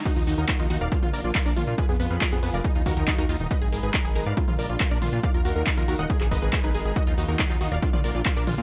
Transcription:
<<
  \new Staff \with { instrumentName = "Supersaw synth" } { \time 4/4 \key ees \minor \tempo 4 = 139 <ges' ees''>16 ees'16 ees'16 ees'16 r16 ees'16 ees'16 <d'' f''>16 f'16 f'16 <bes' d''>16 f'16 f'16 <bes' d''>16 f'16 f'16 | <aes' ces''>16 ces'16 ces'16 ces'16 r16 ces'16 ces'16 <bes' d''>16 ees'16 ees'16 <ges' bes'>16 ees'16 ees'16 <ges' bes'>16 ees'16 ees'16 | <ces'' ees''>16 aes'16 aes'16 aes'16 r16 aes'16 aes'16 <d'' f''>16 f'16 f'16 <bes' d''>16 f'16 f'16 <bes' d''>16 f'16 f'16 | <d'' f''>16 bes'16 bes'16 bes'16 r16 bes'16 bes'16 <ees'' ges''>16 aes'16 aes'16 <ces'' ees''>16 aes'16 aes'16 <aes' ces''>16 aes'16 aes'16 |
<ges' ees''>16 ees'16 ees'16 ees'16 r16 ees'16 ees'16 <d'' f''>16 f'16 f'16 <bes' d''>16 f'16 f'16 <bes' d''>16 f'16 f'16 | }
  \new Staff \with { instrumentName = "Synth pluck" } { \time 4/4 \key ees \minor ees'16 f'16 ges'16 bes'16 ees'16 f'16 ges'16 bes'16 d'16 f'16 bes'16 d''16 r16 d'16 f'16 r16 | f'16 aes'16 ces''16 f''16 f'16 aes'16 ces''16 f''16 ees'16 f'16 ges'16 bes'16 r16 ees'16 f'16 r16 | ees'16 aes'16 bes'16 ces''16 ees'16 aes'16 bes'16 ces''16 d'16 f'16 bes'16 d''16 r16 d'16 f'16 r16 | ees'16 f'16 ges'16 bes'16 ees'16 f'16 ges'16 bes'16 ees'16 aes'16 bes'16 ces''16 r16 ees'16 aes'16 r16 |
ees'16 f'16 ges'16 bes'16 ees'16 f'16 ges'16 bes'16 d'16 d''16 bes'16 d''16 r16 d'16 f'16 r16 | }
  \new Staff \with { instrumentName = "Analog synth pad" } { \time 4/4 \key ees \minor << { <ees f' ges'>2 d'2 | <f aes' ces''>2 <ees ges'>2 | <aes bes' ces''>2 <d' f'>2 | <ees f' ges'>2 <aes bes' ces''>2 |
<ees f' ges'>2 d'2 | } \\ { bes2 bes2 | r2 ees'2 | ees'2 bes2 | ees'1~ |
ees'2 bes2 | } >> }
  \new Staff \with { instrumentName = "Analog synth bass" } { \clef bass \time 4/4 \key ees \minor r16 ees,16 ees,16 ees,16 r16 ees,16 ees,16 ees,,16 r16 bes,,16 bes,,16 bes,,16 r16 bes,,16 bes,,16 bes,16 | r16 f,16 f,16 f,16 r16 f,16 f,16 f,,16 r16 ees,16 ees,16 ees,16 r16 ees,16 ees,16 ees,,16 | r16 aes,,16 aes,,16 aes,,16 r16 aes,,16 aes,,16 aes,16 r16 bes,,16 bes,,16 bes,,16 r16 bes,,16 bes,,16 bes,16 | r16 ees,16 ees,16 ees,16 r16 ees,16 ees,16 ees,,16 r16 aes,,16 aes,,16 aes,,16 r16 aes,,16 aes,,16 aes,,16 |
r16 ees,16 ees,16 ees,16 r16 ees,16 ees,16 ees,,16 r16 bes,,16 bes,,16 bes,,16 r16 bes,,16 bes,,16 bes,16 | }
  \new DrumStaff \with { instrumentName = "Drums" } \drummode { \time 4/4 <cymc hh bd>16 hh16 hho8 <hc hh bd>16 hh16 hho16 hh16 <hh bd>16 <hh toml>16 hho16 hh16 <hc hh bd>16 hh16 <hho toml>16 hh16 | <hh bd>16 hh16 hho16 hh16 <hc hh bd>16 hh16 hho16 hh16 <hh bd>16 hh16 <hho bd>16 hh16 <hc hh bd>16 hh16 hho16 hh16 | <hh bd>16 hh16 hho16 hh16 <hc hh bd>16 hh16 hho16 hh16 <hh bd>16 <hh toml>16 hho16 hh16 <hc hh bd>16 hh16 <hho toml>16 hh16 | <hh bd>16 hh16 hho8 <hc hh bd>16 hh16 hho16 hh16 <hh bd>16 <hc hh>16 <hho bd>8 <hc hh bd>16 hh16 hho16 hh16 |
<hh bd>16 hh16 hho16 hh16 <hc hh bd>16 hh16 hho8 <hh bd>16 <hh toml>16 hho16 hh16 <hc hh bd>16 hh16 <hho toml>16 hh16 | }
>>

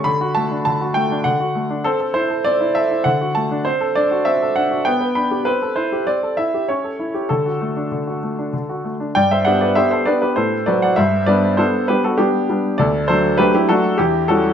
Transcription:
\new Staff \with { instrumentName = "Grand piano" } { \time 3/4 \key d \major \tempo 4 = 100 << { b''8 a''8 a''8 g''8 fis''4 | \key g \major a'8 c''8 d''8 e''8 fis''8 a''8 | c''8 d''8 e''8 fis''8 g''8 b''8 | b'8 c''8 d''8 e''8 cis''4 |
a'2~ a'8 r8 | <d'' g''>16 <c'' e''>16 <d'' fis''>16 <b' d''>16 <c'' e''>16 <a' c''>16 <b' d''>16 <g' b'>16 <a' c''>8 <b' d''>16 <d'' fis''>16 | <c'' e''>8 <b' d''>8 <a' c''>8 <g' b'>16 <fis' a'>16 <d' g'>4 | <a' d''>8 <a' c''>8 <g' b'>16 <e' g'>16 <fis' a'>8 <e' g'>8 <fis' a'>8 | } \\ { d16 fis'16 a16 d'16 d16 fis'16 a16 d'16 d16 fis'16 a16 d'16 | c'16 a'16 e'16 a'16 c'16 e'16 a'16 e'16 d16 fis'16 a16 d'16 | c'16 a'16 d'16 fis'16 c'16 a'16 d'16 fis'16 b16 b'16 d'16 g'16 | c'16 a'16 e'16 g'16 c'16 a'16 e'16 g'16 cis'16 a'16 e'16 g'16 |
d16 fis'16 a16 d'16 d16 fis'16 a16 d'16 d16 fis'16 a16 d'16 | g,8 <b d' g'>8 <b d' g'>8 <b d' g'>8 a,8 <fis c' fis'>8 | g,8 <g b d'>8 <g b d'>8 <g b d'>8 <g b>8 <g b d'>8 | d,8 <fis a d'>8 <fis a d'>8 <fis a d'>8 e,8 <e g cis'>8 | } >> }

